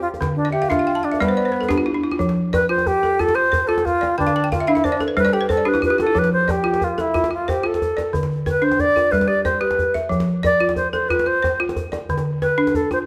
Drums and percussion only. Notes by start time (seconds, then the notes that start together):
0.14 djembe slap, djembe tone
0.22 djembe slap, djembe bass
0.47 djembe slap
0.63 djembe tone
0.71 djembe slap, djembe bass
0.81 djembe slap
0.88 djembe slap
0.97 djembe slap
1.14 djembe tone
1.22 djembe slap, djembe bass
1.46 djembe slap
1.54 djembe slap
1.63 djembe tone
1.70 djembe slap, djembe bass
2.12 djembe slap, djembe tone
2.20 djembe slap, djembe bass
2.29 djembe slap, djembe tone
2.54 djembe tone, djembe bass
2.61 djembe slap
2.78 djembe tone
2.87 djembe bass
3.04 djembe slap, djembe tone
3.20 djembe slap, djembe bass
3.29 djembe slap, djembe tone
3.37 djembe slap
3.53 djembe tone, djembe bass
3.78 djembe slap, djembe tone
3.86 djembe bass
4.03 djembe slap, djembe tone
4.20 djembe slap, djembe bass
4.28 djembe slap, djembe tone
4.52 djembe tone, djembe bass
4.61 djembe slap
4.77 djembe slap, djembe tone
4.85 djembe bass
5.01 djembe slap, djembe tone
5.18 djembe slap, djembe bass
5.26 djembe slap, djembe tone
5.50 djembe tone, djembe bass
5.75 djembe slap, djembe tone
5.83 djembe bass
6.00 djembe slap, djembe tone
6.16 djembe slap, djembe bass
6.24 djembe slap, djembe tone
6.49 djembe tone, djembe bass
6.74 djembe slap, djembe tone
6.81 djembe bass
6.98 djembe slap, djembe tone
7.15 djembe slap, djembe bass
7.24 djembe slap, djembe tone
7.32 djembe slap
7.49 djembe tone, djembe bass
7.74 djembe slap, djembe tone
7.82 djembe bass
7.98 djembe slap, djembe tone
8.14 djembe bass
8.23 djembe slap, djembe tone
8.31 djembe slap
8.47 djembe tone, djembe bass
8.55 djembe slap
8.71 djembe slap, djembe tone
8.79 djembe slap, djembe bass
8.97 djembe tone
9.05 djembe slap
9.13 djembe bass
9.21 djembe slap, djembe tone
9.29 djembe slap
9.37 djembe slap
9.45 djembe slap, djembe tone, djembe bass
9.62 djembe slap
9.71 djembe slap, djembe tone
9.79 djembe slap, djembe bass
9.95 djembe tone
10.12 djembe slap, djembe bass
10.20 djembe slap, djembe tone
10.44 djembe tone, djembe bass
10.52 djembe slap
10.69 djembe slap, djembe tone
10.76 djembe bass
10.94 djembe slap, djembe tone
11.10 djembe slap, djembe bass
11.19 djembe slap, djembe tone
11.44 djembe tone, djembe bass
11.69 djembe slap, djembe tone
11.76 djembe bass
11.93 djembe slap, djembe tone
12.09 djembe slap, djembe bass
12.18 djembe slap, djembe tone
12.42 djembe tone
12.51 djembe slap
12.67 djembe slap, djembe tone
12.75 djembe bass
12.91 djembe slap, djembe tone